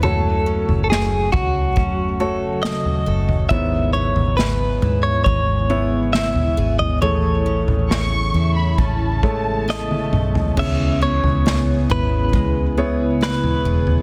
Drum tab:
CC |----------------|----------------|----------------|x---------------|
SD |----o-------o---|----o-------o---|----o-------o---|----o-------o---|
T1 |----------------|----------------|-------------o--|----------------|
T2 |----------------|----------------|--------------o-|----------------|
FT |o--o--o-o----o-o|o--o--o-o----o-o|o--o----o------o|o--o--o-o----o-o|
BD |------o-o-------|o-------o-------|--------o-o-----|o-------o-------|